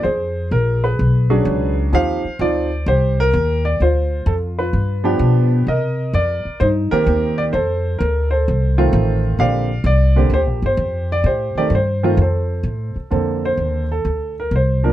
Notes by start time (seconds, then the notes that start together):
0.03 F2 G#4 C5
0.51 A#1 A#4
0.84 G#4 B4
0.99 B1
1.30 F#3 C#4 D4 G#4
1.45 C#2
1.93 D#2 F3 C4 D#4 G4 C5 F5
2.24 muted upright bass stroke
2.39 D2 F3 C4 D#4 F4 D5
2.86 C2 G4 C5
3.20 A#4
3.33 D#2
3.65 D5
3.80 D2 F4 C5
4.26 F2 A4
4.59 F4 B4
4.73 G2
5.04 F3 B3 D4 G4
5.19 B2
5.67 C3 A#4 D#5
6.13 F2 D5
6.45 muted upright bass stroke
6.60 G2 D#4 C5
6.91 D#3 A#3 C4 G4 A#4, muted upright bass stroke
7.06 D#2
7.38 D5
7.53 F2 A4 C5
7.99 D2 A#4
8.31 A4 C5
8.48 C2
8.78 D#3 A3 C4 F4
8.93 A1
9.39 A#1 D3 A#3 C4 G4 D5 F5
9.84 C2 D5
10.16 D3 A#3 C4 G4
10.30 D2 C5
10.34 G4
10.46 A#1
10.62 G1 C5
10.77 F2
11.12 D5
11.24 A2 G4 C5
11.55 D#3 A3 C4 G4 D5, muted upright bass stroke
11.70 G2
11.75 C5
12.03 D#3 A3 C4 F4
12.17 F2
12.22 A4 C5
12.63 A2
12.96 muted upright bass stroke
13.11 F2 D3 A#3 C4 A4
13.45 C5
13.57 D#2
13.92 A4
14.05 D2
14.40 A#4
14.51 C2
14.56 C5
14.84 F3 A#3 D4 A#4